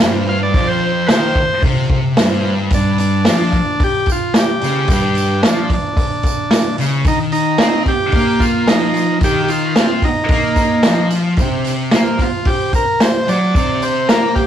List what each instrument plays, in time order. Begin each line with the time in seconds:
0.00 distorted electric guitar G2, transistor combo organ C4 F4 C5, tambourine
0.29 transistor combo organ F5
0.43 transistor combo organ D5
0.54 distorted electric guitar F2, transistor combo organ C4 F4 C5, kick, open hi-hat
0.67 transistor combo organ C5
1.07 distorted electric guitar D#3, transistor combo organ C4 B4 C5, snare, open hi-hat, tambourine
1.11 transistor combo organ F4 C5
1.35 kick
1.62 distorted electric guitar C3, transistor combo organ C4 F4 C5, kick, open hi-hat
1.90 kick
2.17 distorted electric guitar G2, transistor combo organ C4 F4 C5, snare, open hi-hat, tambourine
2.70 distorted electric guitar G2, kick, open hi-hat, tambourine
2.74 transistor combo organ D4
2.98 transistor combo organ D4, open hi-hat, tambourine
3.25 distorted electric guitar F3, snare, open hi-hat, tambourine
3.52 kick, open hi-hat, tambourine
3.80 transistor combo organ G4, kick, open hi-hat, tambourine
4.06 kick, open hi-hat, tambourine
4.12 transistor combo organ F4
4.34 snare, open hi-hat, tambourine
4.39 transistor combo organ G4
4.61 distorted electric guitar C#3, open hi-hat, tambourine
4.87 distorted electric guitar G2, kick, open hi-hat, tambourine
4.93 transistor combo organ G4
5.15 open hi-hat, tambourine
5.43 distorted electric guitar F3, snare, open hi-hat, tambourine
5.48 transistor combo organ D4
5.69 kick, open hi-hat, tambourine
5.74 transistor combo organ D4
5.97 kick, open hi-hat, tambourine
6.23 kick, open hi-hat, tambourine
6.50 snare, open hi-hat, tambourine
6.78 distorted electric guitar C#3, open hi-hat, tambourine
7.04 distorted electric guitar D#3, transistor combo organ D#4, kick, open hi-hat, tambourine
7.32 transistor combo organ D#4, open hi-hat, tambourine
7.58 distorted electric guitar C4, snare, open hi-hat, tambourine
7.86 transistor combo organ G4, kick, open hi-hat
8.12 distorted electric guitar A#3, kick, open hi-hat, tambourine
8.40 transistor combo organ F4, kick, open hi-hat, tambourine
8.67 distorted electric guitar F3, transistor combo organ D#4, snare, open hi-hat, tambourine
8.94 open hi-hat, tambourine
9.21 distorted electric guitar D#3, transistor combo organ G4, kick, open hi-hat, tambourine
9.44 transistor combo organ G4
9.48 transistor combo organ F4, open hi-hat, tambourine
9.76 distorted electric guitar C4, snare, open hi-hat, tambourine
10.02 transistor combo organ D#4, kick, open hi-hat, tambourine
10.28 distorted electric guitar A#3, kick, open hi-hat, tambourine
10.56 kick, open hi-hat, tambourine
10.83 distorted electric guitar F3, snare, open hi-hat, tambourine
11.10 open hi-hat, tambourine
11.36 transistor combo organ C4 G4 C5, kick, open hi-hat, tambourine
11.41 distorted electric guitar C3
11.64 open hi-hat, tambourine
11.91 distorted electric guitar A#3, transistor combo organ C4 G4 C5, snare, open hi-hat, tambourine
12.19 transistor combo organ F4, kick, open hi-hat, tambourine
12.45 transistor combo organ C4 G4, kick, open hi-hat, tambourine
12.50 transistor combo organ G4 C5
12.73 transistor combo organ A#4, kick, open hi-hat, tambourine
13.00 transistor combo organ C5, snare, open hi-hat, tambourine
13.04 transistor combo organ C4 G4 C5
13.28 distorted electric guitar F#3, transistor combo organ D5, open hi-hat, tambourine
13.55 distorted electric guitar C3, kick, open hi-hat, tambourine
13.59 transistor combo organ C4 G4 C5
13.82 transistor combo organ C5, open hi-hat, tambourine
14.09 distorted electric guitar A#3, transistor combo organ C4 G4 A#4 C5, snare, open hi-hat, tambourine
14.35 transistor combo organ G4, kick, open hi-hat, tambourine